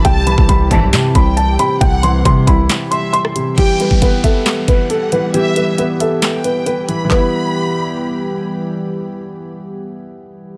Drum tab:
HH |x-x-x-x-x-x-x-x-|x-x-x-x-x-x-x-x-|x-x-x-x-x-x-x-x-|x-x-x-x-x-x-x-x-|
CP |--------x-------|--------x-------|--------x-------|--------x-------|
SD |--------o-------|--------o----r--|--------o-------|--------o-------|
BD |o--oo-o---o-----|o---o-o---------|o--oo-o---o-----|----------------|

HH |----------------|----------------|
CP |x---------------|----------------|
SD |----------------|----------------|
BD |o---------------|----------------|